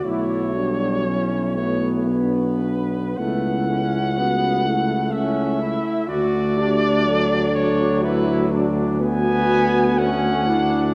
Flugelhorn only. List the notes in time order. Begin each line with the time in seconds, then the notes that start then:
0.05 C#5
1.56 C#5
2.09 B4
3.18 F#5
5.12 E5
6.09 D5
7.54 C#5
8.03 B4
9.00 G#5
9.98 F#5